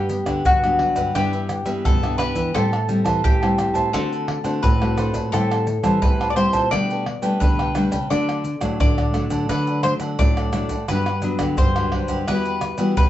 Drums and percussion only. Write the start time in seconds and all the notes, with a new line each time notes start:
0.09 pandeiro, maracas
0.26 pandeiro, tamborim, maracas, surdo
0.45 pandeiro, maracas, surdo
0.64 pandeiro, tamborim, maracas, surdo
0.79 pandeiro, tamborim, surdo
0.96 pandeiro, maracas, surdo
1.15 pandeiro, tamborim, maracas, surdo
1.33 pandeiro, maracas
1.49 pandeiro, tamborim, maracas
1.66 pandeiro, maracas
1.85 pandeiro, maracas, surdo
2.03 pandeiro, tamborim, maracas
2.19 pandeiro, tamborim, maracas
2.36 pandeiro, maracas, surdo
2.55 pandeiro, tamborim, maracas, surdo
2.73 pandeiro, tamborim, maracas
2.89 pandeiro, maracas
3.06 pandeiro, tamborim, maracas, surdo
3.25 pandeiro, maracas, surdo
3.43 pandeiro, tamborim, maracas, surdo
3.58 pandeiro, tamborim, maracas, surdo
3.75 pandeiro, maracas, surdo
3.94 pandeiro, tamborim, maracas, surdo
4.13 pandeiro, maracas
4.28 pandeiro, tamborim
4.45 pandeiro, maracas
4.64 pandeiro, maracas, surdo
4.82 pandeiro, tamborim, maracas
4.98 pandeiro, tamborim, maracas
5.14 pandeiro, maracas, surdo
5.34 pandeiro, tamborim, maracas, surdo
5.51 pandeiro, tamborim, maracas
5.67 pandeiro, maracas
5.84 pandeiro, tamborim, maracas, surdo
6.02 pandeiro, maracas, surdo
6.21 pandeiro, tamborim, maracas, surdo
6.37 pandeiro, tamborim, maracas
6.53 pandeiro, maracas, surdo
6.72 pandeiro, tamborim, maracas, surdo
6.90 pandeiro, maracas
7.06 pandeiro, tamborim
7.23 pandeiro, maracas
7.41 pandeiro, maracas, surdo
7.59 pandeiro, tamborim, maracas
7.75 pandeiro, tamborim, maracas
7.92 pandeiro, maracas, surdo
8.11 pandeiro, tamborim, maracas, surdo
8.29 pandeiro, tamborim, maracas
8.45 pandeiro, maracas
8.61 pandeiro, tamborim, maracas, surdo
8.80 pandeiro, maracas, surdo
8.98 pandeiro, tamborim, maracas, surdo
9.14 pandeiro, tamborim, maracas, surdo
9.30 pandeiro, maracas, surdo
9.49 pandeiro, tamborim, maracas, surdo
9.67 pandeiro, maracas
9.83 pandeiro, tamborim, maracas
10.00 pandeiro, maracas
10.19 pandeiro, maracas, surdo
10.37 pandeiro, tamborim, maracas
10.53 pandeiro, tamborim, maracas
10.69 pandeiro, maracas, surdo
10.88 pandeiro, tamborim, maracas, surdo
11.06 pandeiro, tamborim, maracas
11.22 pandeiro, maracas
11.39 pandeiro, tamborim, maracas, surdo
11.57 pandeiro, maracas, surdo
11.76 pandeiro, tamborim, maracas, surdo
11.92 pandeiro, tamborim, surdo
12.08 pandeiro, maracas, surdo
12.28 pandeiro, tamborim, maracas, surdo
12.45 pandeiro, maracas
12.61 pandeiro, tamborim, maracas
12.78 pandeiro, maracas
12.97 pandeiro, maracas, surdo